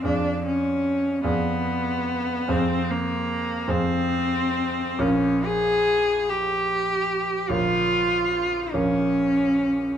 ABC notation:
X:1
M:12/8
L:1/8
Q:3/8=49
K:Fm
V:1 name="Grand piano"
[F,,A=df]3 [F,,Adf]3 [F,,Acf]3 [F,,Acf]3 | [B,,,Bdf]6 [B,,,Bdf]3 [B,,,Bdf]3 |]
V:2 name="Cello"
=D _D2 _C3 =C B,2 C3 | D A2 G3 F3 D3 |]